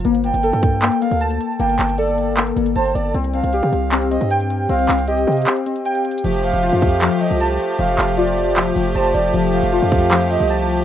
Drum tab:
HH |x-----x-----x-----x-----x-----x-----x-----------x-----x-----x-----x-----x-----x-----x-----------|x-----x-----x-----x-----x-----x-----x-----------x-----x-----x-----x-----x-----x-----x-----------|x-----x-----x-----x-----x-----x-----x-----------x-----x-----x-----x-----x-----x-----x-----------|x-----x-----x-----x-----x-----x-----x--x--x--x--x-----x-----x-----x-----x-----x-----x---x---x---|
CP |------------------------------------------------x-----------------------------------------------|------------x-----------------------------------x-----------------------------------------------|------------------------------------------------x-----------------------------------------------|------------x-----------------------------------x-----------------------------------------------|
BD |------------------------------------o-----------------------------------------------------------|------------------------------------------------------------------------------------------------|------------------------------------------------------------------------------------------------|------------------------------------------------------------------------------------------------|

HH |x-----x-----x-----x-----x-----x-----x-----------x-----x-----x-----x-----x-----x-----x-----------|x-----x-----x-----x-----x-----x-----x-----------x-----x-----x-----x-----x-----x-----x-----------|x-----x-----x-----x-----x-----x-----x-----------x-----x-----x-----x-----x-----x-----x-----------|
CP |------------------------------------------------x-----------------------------------------------|------------x-----------------------------------x-----------------------------------------------|------------------------------------------------x-----------------------------------------------|
BD |------------------------------------o-----------------------------------------------------------|------------------------------------------------------------------------------------------------|------------------------------------o-----------------------------------------------------------|